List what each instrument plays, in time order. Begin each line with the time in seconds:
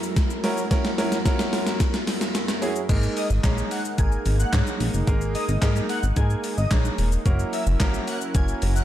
Already playing: supersaw synth F#2 F#3 E4 A#4
0.03 shaker
0.16 kick, snare, closed hi-hat, shaker
0.30 shaker
0.44 grand piano C#4 E4 F#4 A#4, snare, open hi-hat, shaker
0.57 shaker
0.71 grand piano C#4 E4 F#4 A#4, kick, snare, closed hi-hat, shaker
0.85 snare, shaker
0.98 grand piano C#4 E4 F#4 A#4, snare, open hi-hat, shaker
1.12 snare, shaker
1.25 grand piano C#4 E4 F#4 A#4, kick, snare, closed hi-hat, shaker
1.39 snare, shaker
1.53 snare, open hi-hat, shaker
1.67 snare, shaker
1.80 kick, snare, closed hi-hat, shaker
1.94 snare, shaker
2.07 snare, open hi-hat, shaker
2.21 snare, shaker
2.35 snare, closed hi-hat, shaker
2.48 snare, shaker
2.62 grand piano C#4 E4 F#4 G#4, open hi-hat, shaker
2.76 shaker
2.89 analog synth bass G#1, grand piano G#3 A#3 D#4 G#4 A#4, supersaw synth G#3 A#3 D#4, kick, closed hi-hat, crash, shaker
3.03 shaker
3.17 digital synth lead D#5, open hi-hat, shaker
3.30 analog synth bass G#1, shaker
3.43 analog synth bass A#1, grand piano G#3 A#3 D#4 G#4 C#5, kick, snare, clap, closed hi-hat, shaker
3.58 shaker
3.71 digital synth lead F#5, open hi-hat, shaker
3.85 shaker
3.98 analog synth bass G#1, grand piano G#3 A#3 D#4 G#4 A#4, digital synth lead G#5, kick, closed hi-hat, shaker
4.12 shaker
4.26 analog synth bass G#1, open hi-hat, shaker
4.39 digital synth lead F#5, shaker
4.53 analog synth bass G#2, grand piano G#3 A#3 D#4 G#4 C#5, kick, snare, clap, closed hi-hat, shaker
4.67 shaker
4.80 analog synth bass A#1, open hi-hat, shaker
4.94 analog synth bass F#1, shaker
5.07 analog synth bass G#1, grand piano G#3 A#3 D#4 G#4 A#4, kick, closed hi-hat, shaker
5.21 shaker
5.35 digital synth lead D#5, open hi-hat, shaker
5.48 analog synth bass G#1, shaker
5.62 analog synth bass G#2, grand piano G#3 A#3 D#4 G#4 A#4, kick, snare, clap, closed hi-hat, shaker
5.76 shaker
5.89 digital synth lead F#5, open hi-hat, shaker
6.03 analog synth bass G#1, shaker
6.16 analog synth bass G#2, grand piano G#3 A#3 D#4 G#4 A#4, digital synth lead G#5, kick, closed hi-hat, shaker
6.30 shaker
6.44 open hi-hat, shaker
6.57 analog synth bass G#1, digital synth lead D#5, shaker
6.71 analog synth bass A#1, grand piano G#3 A#3 D#4 G#4 C#5, kick, snare, clap, closed hi-hat, shaker
6.85 shaker
6.98 analog synth bass E1, open hi-hat, shaker
7.12 shaker
7.25 analog synth bass F#1, supersaw synth F#3 C#4 E4 A#4, grand piano A#3 C#4 E4 F#4 A#4, kick, closed hi-hat, shaker
7.39 shaker
7.53 digital synth lead E5, open hi-hat, shaker
7.67 analog synth bass F#1, shaker
7.80 analog synth bass G#1, grand piano A#3 C#4 E4 F#4 A#4, kick, snare, clap, closed hi-hat, shaker
7.94 shaker
8.07 digital synth lead F#5, open hi-hat, shaker
8.21 shaker
8.35 analog synth bass F#1, grand piano A#3 C#4 E4 F#4 A#4, digital synth lead G#5, kick, closed hi-hat, shaker
8.48 shaker
8.62 analog synth bass F#1, open hi-hat, shaker
8.76 digital synth lead F#5, shaker